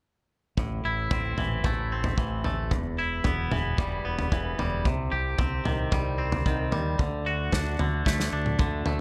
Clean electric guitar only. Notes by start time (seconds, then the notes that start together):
0.59 A2
0.85 E4
1.12 C4
1.38 E3
1.65 A3
1.92 C4
2.18 E3
2.45 A3
2.71 E2
2.99 E4
3.25 B3
3.52 E3
3.79 G3
4.05 B3
4.32 E3
4.59 G3
4.87 C3
5.12 G4
5.39 C4
5.65 D#3
5.93 G3
6.18 C4
6.46 D#3
6.72 G3
6.99 D3
7.26 F#4
7.53 D4
7.80 D3
8.06 A3
8.33 D4
8.60 D3
8.86 A3